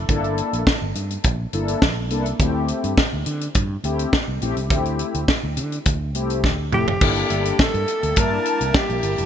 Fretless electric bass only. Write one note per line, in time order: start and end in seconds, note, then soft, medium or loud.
0.09 0.40 G1 loud
0.53 0.63 A#1 medium
0.82 0.91 G1 medium
0.95 1.16 G2 medium
1.25 1.45 A#1 medium
1.53 1.74 G1 medium
1.82 2.11 A#1 medium
2.11 2.31 C2 loud
2.40 2.71 D2 loud
2.84 2.94 G2 medium
3.13 3.22 D2 medium
3.26 3.47 D3 medium
3.55 3.76 G2 loud
3.84 4.04 D2 medium
4.28 4.38 C2 medium
4.41 4.52 A#1 medium
4.57 4.70 C2 medium
4.70 5.02 D2 loud
5.15 5.24 D2 medium
5.44 5.59 D2 medium
5.57 5.78 D3 medium
5.86 6.15 D2 medium
6.15 6.44 C2 medium
6.44 6.74 D2 medium
6.72 6.93 F1 medium
7.01 7.22 G1 loud
7.30 7.51 G1 loud
7.74 7.84 G2 loud
8.03 8.13 D2 medium
8.17 8.37 G2 loud
8.61 8.70 C2 medium
8.90 8.99 A#1 medium
9.03 9.14 G1 loud
9.19 9.26 F1 loud